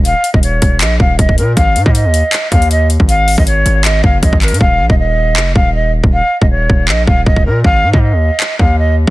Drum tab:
HH |x-----x-----x-----x-----x-----------x-----x-----|x-----x-----x-----x-----x-----x--x--x-----x-----|x-----o-----x-----x-----x-----------x-----x-x-x-|------------------------------------------------|
CP |------------------------x-----------------------|------------------------x-----------------------|------------------------x-----------------x-----|------------------------x-----------------------|
BD |---------o--------o-----------o-----o--o--------|o--------o--------------------o--------------o--|---------o--------------------o-----o--o--------|o--------o--------------------o--------------o--|

HH |------------------------------------------------|------------------------------------------------|
CP |------------------------x-----------------------|------------------------x-----------------------|
BD |---------o--------o-----------o-----o--o--------|o--------o--------------------o-----------------|